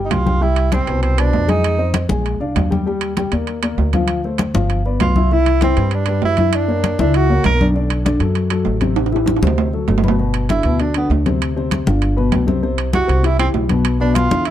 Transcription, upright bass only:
0.10 0.81 C2 medium
0.87 1.30 C2 medium
1.33 2.04 F2 loud
2.09 2.38 A#1 medium
2.40 2.54 C2 medium
2.55 3.26 D#2 medium
3.32 3.75 D#2 medium
3.78 4.49 D2 medium
4.54 4.97 G1 medium
5.00 5.71 C2 medium
5.77 6.19 G2 loud
6.23 6.93 F#2 medium
6.99 7.41 C#2 loud
7.44 8.15 B1 loud
8.20 8.63 F#2 loud
8.66 9.37 A1 loud
9.41 9.85 D2 medium
9.87 10.59 G1 medium
10.64 11.07 D2 medium
11.10 11.81 D2 loud
11.86 12.29 G1 loud
12.32 13.03 C2 medium
13.08 13.51 C2 loud
13.54 14.25 B1 loud
14.30 14.50 E2 medium

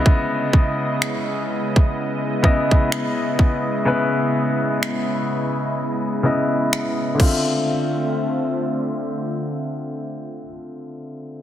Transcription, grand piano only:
0.00 1.11 C#3 medium
0.00 1.12 B3 medium
0.00 1.12 E4 medium
0.00 1.13 D#5 medium
2.43 3.59 C#3 medium
2.43 3.60 B3 medium
2.43 3.60 E4 medium
2.43 3.61 D#5 medium
3.85 5.38 C#3 medium
3.85 5.39 B3 medium
3.85 5.39 E4 medium
3.85 5.40 B4 medium
6.23 7.19 C#3 medium
6.23 7.20 B3 medium
6.23 7.20 E4 medium
6.23 7.20 D#5 medium
7.15 10.40 D3 medium
7.15 10.44 C4 medium
7.21 10.47 F4 medium
7.21 10.50 E5 medium

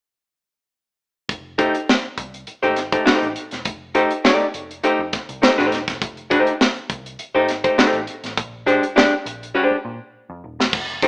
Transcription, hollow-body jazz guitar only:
1.58 1.75 A3 medium
1.58 1.75 D#4 medium
1.58 1.75 G4 medium
1.58 1.76 C5 medium
2.63 2.79 A3 medium
2.63 2.78 D#4 medium
2.63 2.78 G4 medium
2.63 2.78 C5 medium
2.92 3.04 A3 medium
2.92 3.04 D#4 medium
2.92 3.04 G4 soft
2.92 3.04 C5 medium
3.05 3.26 A3 medium
3.05 3.27 D#4 medium
3.05 3.27 G4 medium
3.05 3.27 C5 medium
3.95 4.11 A3 medium
3.95 4.12 D#4 medium
3.95 4.12 G4 medium
3.95 4.12 C5 medium
4.25 4.45 A3 medium
4.25 4.45 D#4 medium
4.25 4.46 G4 medium
4.25 4.46 D5 medium
4.84 5.00 A3 medium
4.84 5.00 D#4 medium
4.84 5.01 G4 medium
4.84 5.01 C5 medium
5.42 5.55 A3 medium
5.42 5.56 D#4 medium
5.42 5.56 G4 medium
5.42 5.56 C5 medium
5.58 5.78 A3 medium
5.58 5.78 D#4 medium
5.58 5.78 G4 medium
5.58 5.77 C5 medium
6.30 6.51 A3 medium
6.30 6.51 D#4 medium
6.30 6.51 G4 medium
6.30 6.52 C5 medium
7.35 7.50 A3 medium
7.35 7.50 D#4 medium
7.35 7.50 G4 medium
7.35 7.50 C5 medium
7.64 7.76 A3 soft
7.64 7.76 D#4 medium
7.64 7.76 G4 medium
7.64 7.76 C5 medium
7.78 7.99 A3 medium
7.78 7.99 D#4 medium
7.78 7.99 G4 medium
7.78 7.99 C5 medium
8.66 8.83 G#3 medium
8.66 8.83 D4 medium
8.66 8.83 G4 medium
8.66 8.84 C5 medium
8.96 9.13 G#3 medium
8.96 9.13 D4 medium
8.96 9.13 G4 loud
8.96 9.13 D5 medium
9.55 9.75 G#3 medium
9.55 9.75 D4 medium
9.55 9.76 G4 medium
9.55 9.76 C5 medium
11.03 11.08 A3 medium
11.03 11.08 D#4 medium
11.03 11.08 G4 medium
11.03 11.08 C5 medium

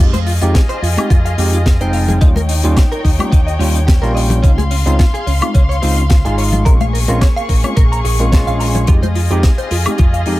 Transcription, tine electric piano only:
0.00 0.11 G#3 medium
0.00 0.11 C4 medium
0.00 0.11 D#4 medium
0.00 0.12 G4 medium
0.42 0.59 G#3 medium
0.42 0.59 C4 medium
0.42 0.60 D#4 medium
0.42 0.60 G4 loud
0.97 1.08 G#3 medium
0.97 1.08 C4 medium
0.97 1.08 D#4 medium
0.97 1.08 G4 medium
1.38 1.57 G#3 medium
1.38 1.57 C4 medium
1.38 1.57 D#4 medium
1.38 1.57 G4 medium
1.80 2.18 G#3 medium
1.80 2.18 C4 medium
1.80 2.18 D#4 medium
1.80 2.19 G5 loud
2.21 2.33 G3 medium
2.21 2.34 A#3 medium
2.21 2.34 C#4 medium
2.21 2.34 F4 medium
2.64 2.81 G3 medium
2.64 2.81 A#3 medium
2.64 2.82 C#4 medium
2.64 2.82 F4 loud
3.19 3.30 G3 medium
3.19 3.30 A#3 medium
3.19 3.30 C#4 medium
3.19 3.30 F4 medium
3.60 3.79 G3 medium
3.60 3.79 A#3 medium
3.60 3.79 C#4 medium
3.60 3.79 F4 medium
4.02 4.40 G3 loud
4.02 4.40 A#3 medium
4.02 4.40 C#4 medium
4.02 4.41 F4 loud
4.43 4.56 G#3 medium
4.43 4.56 C4 medium
4.43 4.56 D#4 medium
4.43 4.56 F4 medium
4.86 5.03 G#3 medium
4.86 5.04 C4 medium
4.86 5.04 D#4 medium
4.86 5.04 F4 loud
5.42 5.52 G#3 medium
5.42 5.52 C4 medium
5.42 5.52 D#4 medium
5.42 5.53 F4 medium
5.82 6.01 G#3 medium
5.82 6.01 C4 medium
5.82 6.01 D#4 medium
5.82 6.02 F4 medium
6.25 6.63 G#3 loud
6.25 6.63 D#4 medium
6.25 6.63 F4 loud
6.66 6.78 G#3 medium
6.66 6.78 C4 medium
6.66 6.78 C#4 medium
6.66 6.78 F4 medium
7.08 7.26 G#3 medium
7.08 7.26 C4 medium
7.08 7.26 C#4 medium
7.08 7.26 F4 loud
7.64 7.74 G#3 medium
7.64 7.75 C4 medium
7.64 7.75 C#4 medium
7.64 7.75 F4 medium
8.19 8.30 G#3 medium
8.19 8.30 C4 medium
8.19 8.30 C#4 medium
8.19 8.30 F4 medium
8.32 8.85 G#3 medium
8.32 8.85 C#4 medium
8.32 8.85 F4 loud
8.88 9.00 G#3 medium
8.88 9.00 C4 medium
8.88 9.00 D#4 medium
8.88 9.01 G4 medium
9.31 9.48 G#3 medium
9.31 9.48 C4 medium
9.31 9.48 D#4 medium
9.31 9.49 G4 loud
9.86 9.97 G#3 medium
9.86 9.97 C4 medium
9.86 9.97 D#4 medium
9.86 9.97 G4 medium
10.27 10.40 G#3 medium
10.27 10.40 C4 medium
10.27 10.40 D#4 medium
10.27 10.40 G4 medium

